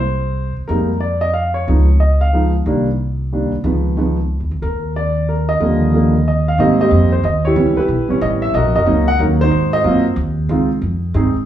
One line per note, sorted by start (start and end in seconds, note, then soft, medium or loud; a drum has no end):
0.00 0.53 C2 medium
0.00 0.53 C5 loud
0.57 muted upright bass stroke soft
0.68 1.64 F2 medium
0.68 0.88 G3 soft
0.68 0.88 G#3 soft
0.68 0.88 A#3 soft
0.68 0.89 D#4 soft
0.68 0.99 A#4 medium
1.00 1.23 D5 medium
1.21 1.33 D#5 medium
1.33 1.56 F5 medium
1.54 1.97 C#5 medium
1.68 2.62 C#2 medium
1.68 1.86 F3 soft
1.68 1.87 G#3 soft
1.68 1.87 B3 soft
1.68 1.87 D#4 medium
2.00 2.20 D#5 medium
2.21 2.52 F5 medium
2.33 2.52 F3 soft
2.33 2.52 G#3 soft
2.33 2.52 B3 soft
2.33 2.53 D#4 medium
2.66 3.48 C2 medium
2.66 2.85 D#3 medium
2.66 2.85 G3 medium
2.66 2.85 A#3 medium
2.66 2.85 D4 medium
3.32 3.51 D#3 soft
3.32 3.51 G3 soft
3.32 3.51 A#3 soft
3.32 3.51 D4 medium
3.52 muted upright bass stroke soft
3.64 4.37 C#2 medium
3.64 3.96 D#3 medium
3.64 3.96 F3 soft
3.64 3.96 G#3 soft
3.64 3.96 B3 medium
3.97 4.16 D#3 medium
3.97 4.16 F3 soft
3.97 4.16 G#3 soft
3.97 4.17 B3 medium
4.40 4.51 D#2 medium
4.51 4.62 C#2 medium
4.62 5.57 D#2 medium
4.62 4.93 A#4 medium
4.96 5.30 D5 medium
5.29 5.48 A#4 medium
5.49 6.26 D#5 medium
5.60 6.55 D#2 medium
5.60 5.92 D3 medium
5.60 5.92 F3 soft
5.60 5.92 G3 soft
5.60 5.93 A#3 medium
5.93 6.12 D3 medium
5.93 6.12 F3 soft
5.93 6.12 G3 medium
5.93 6.13 A#3 medium
6.28 6.46 D#5 medium
6.48 6.60 F5 medium
6.58 6.90 G#2 medium
6.58 7.08 D#3 medium
6.58 7.08 G3 medium
6.58 7.08 A#3 medium
6.58 7.08 C4 medium
6.58 6.81 G4 medium
6.58 6.81 C5 medium
6.58 6.79 D#5 medium
6.81 7.22 G4 medium
6.81 7.11 C5 medium
6.81 7.11 D#5 medium
6.91 7.23 F2 medium
7.12 7.23 C5 medium
7.23 7.55 D#2 medium
7.23 7.44 D#5 medium
7.45 7.77 E4 medium
7.45 7.77 G4 medium
7.45 7.78 C#5 medium
7.56 7.75 C#2 medium
7.56 7.75 E3 medium
7.56 7.75 G3 medium
7.56 7.75 B3 medium
7.56 7.75 C#4 medium
7.77 8.19 E4 medium
7.77 8.19 G4 medium
7.77 8.07 B4 medium
7.77 muted upright bass stroke soft
7.88 8.08 B1 medium
8.09 8.51 E3 medium
8.09 8.52 G3 medium
8.09 8.52 B3 medium
8.09 8.52 C#4 medium
8.09 muted upright bass stroke soft
8.21 8.53 A1 medium
8.21 8.27 D#5 medium
8.42 8.54 E5 loud
8.54 8.64 B1 medium
8.54 8.76 F#4 medium
8.54 8.76 A#4 medium
8.54 8.74 D#5 medium
8.64 8.75 A#1 medium
8.75 8.86 F#1 medium
8.75 9.18 F#4 medium
8.75 9.18 A#4 medium
8.75 9.09 D#5 loud
8.86 9.18 C#2 medium
8.86 9.05 F#3 medium
8.86 9.05 A#3 medium
8.86 9.05 C#4 medium
8.86 9.05 D#4 medium
9.08 9.20 F#5 loud
9.19 9.51 D#2 medium
9.19 9.38 F#3 medium
9.19 9.38 A#3 medium
9.19 9.38 C#4 medium
9.19 9.38 D#4 medium
9.19 9.25 A#4 medium
9.41 9.83 D#4 medium
9.41 9.73 F#4 medium
9.41 9.71 C5 loud
9.51 9.83 G#2 medium
9.73 10.15 F#4 medium
9.73 10.15 C5 medium
9.73 10.03 D#5 loud
9.84 10.16 F#2 medium
9.84 10.03 F#3 medium
9.84 10.03 A#3 medium
9.84 10.03 C4 medium
9.84 10.03 F4 medium
10.16 10.48 D#2 medium
10.49 10.81 C#2 medium
10.49 10.68 G#3 medium
10.49 10.68 C4 medium
10.49 10.68 D#4 medium
10.49 10.68 F4 medium
10.82 11.13 F2 medium
11.14 11.33 G2 medium
11.14 11.33 G#3 medium
11.14 11.33 C4 medium
11.14 11.33 D#4 medium
11.14 11.34 G#4 medium
11.35 muted upright bass stroke soft